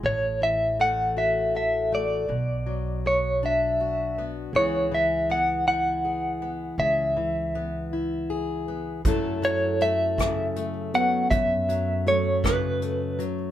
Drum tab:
HH |------|------|------|------|
SD |------|------|------|------|
BD |------|------|------|------|

HH |xxxxxx|xxxxxx|
SD |---r--|---r--|
BD |o--o--|o--o--|